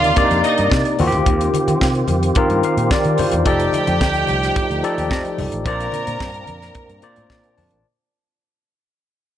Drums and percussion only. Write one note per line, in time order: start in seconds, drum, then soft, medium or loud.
0.02 closed hi-hat soft
0.02 high conga medium
0.16 kick loud
0.16 closed hi-hat medium
0.16 muted conga soft
0.16 low conga medium
0.31 closed hi-hat medium
0.43 closed hi-hat medium
0.43 muted conga soft
0.58 closed hi-hat medium
0.70 kick loud
0.70 snare loud
0.70 muted conga soft
0.85 closed hi-hat soft
0.99 open hi-hat medium
0.99 muted conga soft
0.99 high conga medium
0.99 low conga medium
1.12 closed hi-hat soft
1.12 low conga medium
1.26 kick loud
1.26 closed hi-hat medium
1.41 closed hi-hat soft
1.54 closed hi-hat medium
1.54 muted conga soft
1.54 high conga medium
1.68 closed hi-hat medium
1.68 high conga medium
1.81 kick loud
1.81 snare loud
1.81 muted conga soft
1.95 closed hi-hat soft
2.08 closed hi-hat medium
2.08 muted conga soft
2.08 high conga loud
2.23 closed hi-hat soft
2.23 high conga medium
2.35 kick loud
2.35 closed hi-hat medium
2.35 muted conga soft
2.35 low conga medium
2.50 closed hi-hat soft
2.63 closed hi-hat medium
2.78 closed hi-hat soft
2.91 kick loud
2.91 snare loud
3.04 closed hi-hat soft
3.18 open hi-hat medium
3.18 muted conga soft
3.18 high conga medium
3.18 low conga medium
3.31 closed hi-hat soft
3.31 low conga medium
3.45 kick loud
3.45 closed hi-hat medium
3.45 muted conga soft
3.60 closed hi-hat medium
3.73 closed hi-hat medium
3.73 muted conga soft
3.73 high conga medium
3.87 closed hi-hat medium
3.87 high conga medium
4.01 kick loud
4.01 snare loud
4.14 closed hi-hat soft
4.27 closed hi-hat medium
4.27 muted conga soft
4.27 high conga medium
4.43 snare soft
4.43 closed hi-hat soft
4.56 kick loud
4.56 closed hi-hat medium
4.56 muted conga soft
4.56 low conga medium
4.71 closed hi-hat soft
4.84 closed hi-hat medium
4.84 muted conga soft
4.98 closed hi-hat soft
5.11 kick loud
5.11 snare loud
5.25 closed hi-hat soft
5.38 open hi-hat medium
5.38 muted conga soft
5.38 high conga medium
5.38 low conga medium
5.52 closed hi-hat soft
5.66 kick loud
5.66 closed hi-hat medium
5.66 muted conga soft
5.80 closed hi-hat medium
5.92 closed hi-hat medium
5.92 muted conga soft
5.92 high conga medium
6.07 closed hi-hat medium
6.07 high conga medium
6.20 kick loud
6.20 snare loud
6.34 closed hi-hat soft
6.46 closed hi-hat medium
6.46 high conga medium
6.62 snare soft
6.62 closed hi-hat medium
6.75 kick loud
6.75 closed hi-hat medium
6.75 muted conga soft
6.75 low conga medium
6.89 closed hi-hat soft
7.02 closed hi-hat medium
7.02 muted conga soft
7.16 closed hi-hat soft
7.30 kick loud
7.30 snare loud
7.44 closed hi-hat soft
7.58 open hi-hat medium
7.58 high conga medium
7.58 low conga medium
7.71 closed hi-hat medium